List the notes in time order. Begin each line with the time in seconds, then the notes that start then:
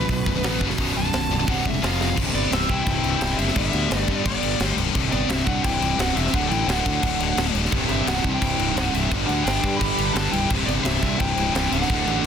Already playing: B1 F#2 B2 D3 B3 F#4 B4
0.01 B1 F#2
0.09 B1 F#2, kick, open hi-hat
0.26 B0 B1 F#2, kick
0.36 B1 F#2
0.43 A1 B1 F#2 B2, snare, open hi-hat
0.60 F#1 B1 F#2 B2, kick
0.70 B1 F#2, snare
0.77 B0 B1 F#2 B2, kick, open hi-hat
0.96 B0 B1 F#2 A5
1.05 B1 F#2
1.13 B0 B1 F#2, snare, open hi-hat
1.31 B0 B1 F#2
1.40 B1 F#2
1.46 C1 C2 G2 C3 G3 G4 F#5, kick, open hi-hat
1.65 E1 C2 G2 E5, kick
1.74 C2 G2
1.81 F1 F2 C3 F3 F4 F5, snare, open hi-hat
2.00 F2 C3 F3, snare
2.08 F2 C3
2.16 C1 C2 G2 C3 E3 C4 G4, kick, crash
2.34 G1 B3 D5, crash
2.51 C1 C2 G2 C3 C4 E5, snare, crash
2.62 snare
2.68 C2 G2 C3 E4 G5, kick, crash
2.86 C1 C2 G2 C3, kick, crash
3.03 C1 C2 G2 C3, crash
3.20 C1 C2 G2 C3, snare, crash
3.38 F#1 C2 G2 C3 C4 E5, crash
3.48 snare
3.56 G1 G2 D3 G3 B3 E5, kick, crash
3.73 D2, crash
3.90 G1 G2 D3 G3, snare, crash
3.99 D5, snare
4.08 G2 D3 G3 B3 D5, kick, crash
4.25 G1 G2 D3 G3 B3 D5, kick, crash
4.42 G1 G2 D3 G3, crash
4.60 G1 G2 D3 G3, snare, crash
4.76 B0 G2 D3 G3, crash
4.95 C1 C2 G2 C3 E3 C4, kick, crash
5.12 G1 B3 D5, crash
5.29 C1 C2 G2 C3 C4 E5, snare, crash
5.39 snare
5.45 C2 G2 C3 D4 F#5, kick, crash
5.63 C1 C2 G2 C3 E4 G5, kick, crash
5.81 C1 C2 G2 C3, crash
5.98 C1 C2 G2 C3 C4 F#5, snare, crash
6.15 E1 C2 G2 C3 C4 E5, crash
6.27 snare
6.33 D1 D2 A2 D3 F#3 D4 A4 F#5, kick, crash
6.49 A1 E4 G5, crash
6.67 D1 D2 A2 D3 D4 F#5, snare, crash
6.79 snare
6.85 D2 A2 D3, kick, crash
7.02 D1 D2 A2 D3, kick, crash
7.19 D1 A2 D3, crash
7.24 D2
7.37 D1 D2 A2 D3, snare, crash
7.54 D1 D2 A2 D3, crash
7.65 snare
7.71 C1 C2 G2 C3 G3 E4 C5, kick, crash
7.89 G1 C4 E5, crash
8.06 C1 C2 G2 C3 C4 F#5, snare, crash
8.17 snare
8.23 C2 G2 C3 E4 G5, kick, crash
8.40 C1 C2 G2 C3, kick, crash
8.58 C1 C2 G2 C3, crash
8.70 D#4
8.75 C1 C2 G2 C3 F#5, snare, crash
8.92 C1 C2 G2 C3 C4 E5, crash
9.10 G1 G2 D3 G3 D4 B4, kick, crash
9.27 D2 D4 F#5, crash
9.44 G1 G2 D3 G3 D4 G5, snare, crash
9.62 G2 D3 G3, kick, crash
9.77 G1 G2 D3 G4 B5
9.81 G3, kick, crash
9.98 G1 G2 D3 G3, crash
10.13 G1 G2 D3 G3 D4 A5, snare, crash
10.30 B0 G2 D3 G3 E4 G5, crash
10.50 C1 C2 G2 C3 G3 E4 C5, kick, crash
10.65 G1 B3 D5, crash
10.84 C1 C2 G2 C3 C4 E5, snare, crash
10.95 snare
11.01 C2 G2 C3, kick, crash
11.17 C1 C2 G2 C3 E4 G5, kick, crash
11.37 C1 C2 G2 C3, crash
11.53 C1 C2 G2 C3 E4 G5, snare, crash
11.59 C3
11.71 C#1 C2 G2 C3 D4 F#5, crash
11.82 snare
11.89 D1 D2 A2 D3 A3 F#4 D5, kick, crash
12.06 A1, crash